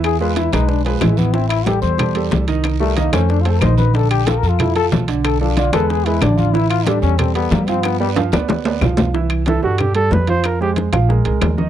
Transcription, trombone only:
\new Staff \with { instrumentName = "Trombone" } { \time 4/4 \key c \major \tempo 4 = 185 gis'8 f'8 e'8 ees'8 d'8 f8 gis8 b8 | c'8 e'8 g'8 c''4. r4 | r8 a8 bes8 des'8 \tuplet 3/2 { d'8 f'8 a'8 } c''8 b'8 | a'8 g'8 \tuplet 3/2 { a'8 bes'8 f'8 } e'8 a'8 r4 |
a'8 d'8 f'8 a'8 gis'8 e'8 d'8 f'8 | e'8 f'8 d'8 des'8 c'8 b8 bes8 c'8 | b8 g8 r2. | r1 |
r1 | }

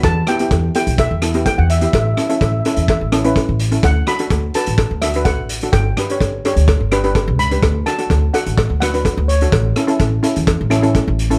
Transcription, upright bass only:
\new Staff \with { instrumentName = "Upright bass" } { \clef bass \time 4/4 \key d \major \tempo 4 = 126 e,8 r8 e,8 r16 b,,8 e,4 e,8. | a,,8 r8 a,,8 r16 e,8 a,,4 a,,8. | d,8 r8 d,8 r16 a,,8 d,4 a,,8. | g,,8 r8 g,,8 r16 d,8 g,,4 cis,8. |
d,8 r8 d,8 r16 a,,8 d,4 d,8. | a,,8 r8 a,,8 r16 e,8 a,,4 a,,8. | }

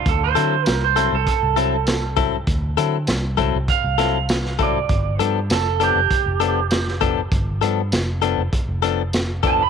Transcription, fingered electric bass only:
\new Staff \with { instrumentName = "Fingered electric bass" } { \clef bass \time 4/4 \key g \major \tempo 4 = 99 d,8 d8 c,8. c,16 r16 c,4.~ c,16 | d,8 d8 c,8. c,16 r16 c,4.~ c,16 | g,,8 g,8 f,,8. f,,16 r16 f,,4.~ f,,16 | g,,8 g,8 f,,8. f,,16 r16 f,,4.~ f,,16 | }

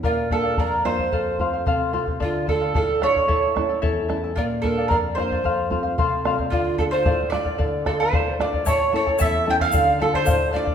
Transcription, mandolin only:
\new Staff \with { instrumentName = "Mandolin" } { \time 2/4 \key d \minor \tempo 4 = 111 f'8 a'8 bes'8 c''8~ | c''4 r4 | f'8 a'8 a'8 cis''8~ | cis''4 r4 |
f'8 a'8 bes'8 c''8~ | c''4 r4 | f'8 a'16 c''8. d''8~ | d''8 a'16 c''8. d''8 |
cis''8 cis''8 e''8 g''16 f''16~ | f''8 a'16 c''8. d''8 | }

